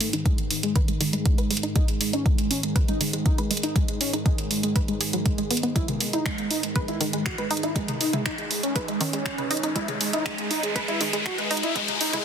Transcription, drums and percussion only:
0.01 open hi-hat loud
0.13 closed hi-hat soft
0.26 kick loud
0.26 closed hi-hat soft
0.38 closed hi-hat soft
0.51 open hi-hat loud
0.63 closed hi-hat soft
0.76 kick loud
0.76 closed hi-hat medium
0.88 closed hi-hat soft
1.01 open hi-hat loud
1.13 closed hi-hat soft
1.26 kick loud
1.26 closed hi-hat medium
1.38 closed hi-hat soft
1.51 open hi-hat loud
1.57 closed hi-hat medium
1.63 closed hi-hat soft
1.76 kick loud
1.76 closed hi-hat medium
1.88 closed hi-hat soft
2.01 open hi-hat loud
2.13 closed hi-hat soft
2.26 kick loud
2.26 closed hi-hat soft
2.38 closed hi-hat soft
2.51 open hi-hat loud
2.63 closed hi-hat soft
2.76 kick loud
2.76 closed hi-hat medium
2.88 closed hi-hat soft
3.01 open hi-hat loud
3.13 closed hi-hat soft
3.26 kick loud
3.26 closed hi-hat medium
3.38 closed hi-hat soft
3.51 open hi-hat loud
3.57 closed hi-hat medium
3.63 closed hi-hat soft
3.76 kick loud
3.76 closed hi-hat medium
3.88 closed hi-hat soft
4.01 open hi-hat loud
4.13 closed hi-hat soft
4.26 kick loud
4.26 closed hi-hat soft
4.38 closed hi-hat soft
4.51 open hi-hat loud
4.63 closed hi-hat soft
4.76 kick loud
4.76 closed hi-hat medium
4.88 closed hi-hat soft
5.01 open hi-hat loud
5.13 closed hi-hat soft
5.26 kick loud
5.26 closed hi-hat medium
5.38 closed hi-hat soft
5.51 open hi-hat loud
5.57 closed hi-hat medium
5.63 closed hi-hat soft
5.76 kick loud
5.76 closed hi-hat medium
5.88 closed hi-hat soft
5.88 mid tom medium
6.01 open hi-hat loud
6.13 closed hi-hat soft
6.26 finger snap loud
6.26 kick loud
6.26 closed hi-hat soft
6.38 closed hi-hat soft
6.51 open hi-hat loud
6.63 closed hi-hat soft
6.76 kick loud
6.76 closed hi-hat medium
6.88 closed hi-hat soft
7.01 open hi-hat loud
7.13 closed hi-hat soft
7.26 finger snap loud
7.26 kick loud
7.26 closed hi-hat medium
7.38 closed hi-hat soft
7.51 open hi-hat loud
7.57 closed hi-hat medium
7.63 closed hi-hat soft
7.76 kick loud
7.76 closed hi-hat medium
7.88 closed hi-hat soft
7.88 mid tom medium
8.01 open hi-hat loud
8.13 closed hi-hat soft
8.13 mid tom medium
8.26 finger snap loud
8.26 kick loud
8.26 closed hi-hat soft
8.38 closed hi-hat soft
8.51 open hi-hat loud
8.63 closed hi-hat soft
8.76 kick loud
8.76 closed hi-hat medium
8.88 closed hi-hat soft
9.01 open hi-hat loud
9.13 closed hi-hat soft
9.26 finger snap loud
9.26 kick loud
9.26 closed hi-hat medium
9.38 closed hi-hat soft
9.38 mid tom medium
9.51 open hi-hat loud
9.57 closed hi-hat medium
9.63 closed hi-hat soft
9.76 kick loud
9.76 closed hi-hat medium
9.88 closed hi-hat soft
9.88 mid tom medium
10.01 open hi-hat loud
10.13 closed hi-hat soft
10.26 finger snap loud
10.26 kick loud
10.26 closed hi-hat soft
10.38 closed hi-hat soft
10.51 open hi-hat loud
10.63 closed hi-hat soft
10.76 kick loud
10.76 closed hi-hat medium
10.88 closed hi-hat soft
11.01 open hi-hat loud
11.13 closed hi-hat soft
11.26 finger snap loud
11.26 kick loud
11.26 closed hi-hat medium
11.38 closed hi-hat soft
11.51 open hi-hat loud
11.57 closed hi-hat medium
11.63 closed hi-hat soft
11.76 kick loud
11.76 closed hi-hat medium
11.88 closed hi-hat soft
11.88 mid tom medium
12.01 open hi-hat loud
12.13 closed hi-hat soft
12.13 mid tom medium

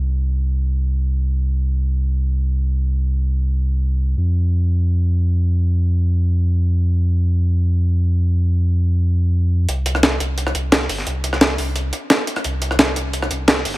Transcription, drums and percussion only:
9.69 closed hi-hat medium
9.86 closed hi-hat medium
9.95 cross-stick soft
10.03 snare loud
10.03 closed hi-hat medium
10.20 closed hi-hat medium
10.38 closed hi-hat medium
10.47 cross-stick soft
10.55 closed hi-hat medium
10.72 snare loud
10.72 closed hi-hat medium
10.81 snare soft
10.89 closed hi-hat medium
10.89 open hi-hat medium
10.98 snare soft
11.07 closed hi-hat medium
11.24 closed hi-hat medium
11.33 cross-stick soft
11.33 snare soft
11.41 snare loud
11.41 closed hi-hat medium
11.50 snare soft
11.58 closed hi-hat medium
11.58 open hi-hat medium
11.76 closed hi-hat medium
11.93 closed hi-hat medium
12.10 snare loud
12.10 closed hi-hat medium
12.27 closed hi-hat medium
12.36 cross-stick soft
12.36 closed hi-hat soft
12.44 closed hi-hat medium
12.62 closed hi-hat medium
12.71 cross-stick soft
12.79 snare loud
12.79 closed hi-hat medium
12.96 closed hi-hat medium
13.13 closed hi-hat medium
13.22 cross-stick soft
13.31 closed hi-hat medium
13.48 snare loud
13.48 closed hi-hat medium
13.57 snare soft
13.65 closed hi-hat medium
13.65 open hi-hat medium
13.74 snare soft

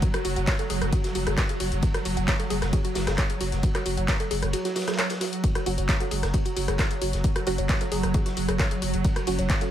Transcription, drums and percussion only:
0.02 kick loud
0.02 closed hi-hat medium
0.02 ride medium
0.14 cross-stick loud
0.14 closed hi-hat medium
0.25 open hi-hat loud
0.25 ride medium
0.36 closed hi-hat medium
0.47 kick loud
0.47 snare loud
0.47 clap loud
0.47 closed hi-hat medium
0.47 ride medium
0.59 closed hi-hat soft
0.70 open hi-hat loud
0.70 ride medium
0.82 cross-stick medium
0.82 closed hi-hat soft
0.93 kick loud
0.93 closed hi-hat medium
0.93 ride medium
1.04 snare soft
1.04 closed hi-hat medium
1.15 open hi-hat loud
1.15 ride medium
1.27 cross-stick medium
1.27 closed hi-hat medium
1.38 kick loud
1.38 cross-stick loud
1.38 snare loud
1.38 clap loud
1.38 closed hi-hat medium
1.38 ride medium
1.49 closed hi-hat medium
1.60 open hi-hat loud
1.60 ride medium
1.72 closed hi-hat medium
1.82 kick loud
1.82 closed hi-hat medium
1.82 ride medium
1.94 cross-stick loud
1.94 closed hi-hat medium
2.05 open hi-hat loud
2.05 ride medium
2.17 closed hi-hat medium
2.28 kick loud
2.28 snare loud
2.28 clap loud
2.28 closed hi-hat medium
2.28 ride medium
2.40 closed hi-hat medium
2.50 open hi-hat loud
2.50 ride medium
2.62 cross-stick medium
2.62 snare medium
2.62 closed hi-hat medium
2.73 kick loud
2.73 closed hi-hat medium
2.73 ride medium
2.85 closed hi-hat medium
2.85 ride soft
2.95 snare loud
2.95 open hi-hat loud
2.95 ride medium
3.07 cross-stick medium
3.07 snare loud
3.07 closed hi-hat medium
3.07 ride medium
3.18 kick loud
3.18 cross-stick loud
3.18 snare loud
3.18 clap loud
3.18 closed hi-hat medium
3.18 ride medium
3.30 closed hi-hat medium
3.41 open hi-hat loud
3.41 ride medium
3.52 snare medium
3.52 closed hi-hat medium
3.63 kick loud
3.63 closed hi-hat medium
3.63 ride medium
3.75 cross-stick loud
3.75 clap soft
3.75 closed hi-hat medium
3.86 open hi-hat loud
3.86 ride medium
3.97 closed hi-hat medium
4.08 kick loud
4.08 snare loud
4.08 clap loud
4.08 closed hi-hat loud
4.08 ride medium
4.20 closed hi-hat medium
4.31 open hi-hat loud
4.31 ride medium
4.42 cross-stick medium
4.42 closed hi-hat medium
4.53 closed hi-hat medium
4.53 ride medium
4.65 snare soft
4.65 closed hi-hat medium
4.76 snare medium
4.76 open hi-hat loud
4.76 ride medium
4.82 snare medium
4.82 ride medium
4.88 cross-stick medium
4.88 snare medium
4.88 closed hi-hat medium
4.88 ride medium
4.92 snare medium
4.92 ride medium
4.98 cross-stick loud
4.98 snare loud
4.98 clap loud
4.98 closed hi-hat medium
4.98 ride medium
5.10 snare loud
5.10 closed hi-hat medium
5.10 ride medium
5.20 snare loud
5.20 open hi-hat loud
5.20 ride medium
5.33 closed hi-hat medium
5.44 kick loud
5.44 closed hi-hat medium
5.44 ride medium
5.55 cross-stick medium
5.55 closed hi-hat medium
5.66 open hi-hat loud
5.66 ride medium
5.78 closed hi-hat medium
5.88 kick loud
5.88 snare loud
5.88 clap loud
5.88 closed hi-hat loud
5.88 ride medium
6.00 closed hi-hat medium
6.11 open hi-hat loud
6.11 ride medium
6.23 cross-stick medium
6.23 snare medium
6.23 closed hi-hat medium
6.33 kick loud
6.33 closed hi-hat loud
6.33 ride medium
6.45 closed hi-hat medium
6.45 ride soft
6.57 open hi-hat loud
6.57 ride medium
6.68 cross-stick medium
6.68 closed hi-hat medium
6.68 ride soft
6.79 kick loud
6.79 cross-stick loud
6.79 snare loud
6.79 clap loud
6.79 closed hi-hat medium
6.79 ride medium
6.91 closed hi-hat medium
7.02 open hi-hat loud
7.02 ride medium
7.13 snare medium
7.13 closed hi-hat medium
7.24 kick loud
7.24 closed hi-hat loud
7.24 ride medium
7.36 cross-stick medium
7.36 closed hi-hat medium
7.47 open hi-hat loud
7.47 ride medium
7.58 closed hi-hat medium
7.69 kick loud
7.69 snare loud
7.69 clap loud
7.69 closed hi-hat loud
7.69 ride medium
7.81 closed hi-hat medium
7.92 open hi-hat loud
7.92 ride medium
8.03 cross-stick medium
8.03 closed hi-hat medium
8.14 kick loud
8.14 closed hi-hat loud
8.14 ride medium
8.26 snare soft
8.26 closed hi-hat medium
8.37 open hi-hat loud
8.37 ride medium
8.49 cross-stick medium
8.49 closed hi-hat medium
8.59 kick loud
8.59 cross-stick medium
8.59 snare loud
8.59 clap loud
8.59 closed hi-hat loud
8.59 ride medium
8.71 closed hi-hat medium
8.82 open hi-hat loud
8.82 ride medium
8.94 closed hi-hat medium
9.04 kick loud
9.04 closed hi-hat medium
9.04 ride medium
9.16 cross-stick medium
9.16 closed hi-hat medium
9.27 open hi-hat loud
9.27 ride medium
9.39 closed hi-hat medium
9.50 kick loud
9.50 snare loud
9.50 clap loud
9.50 closed hi-hat loud
9.50 ride loud
9.61 closed hi-hat medium

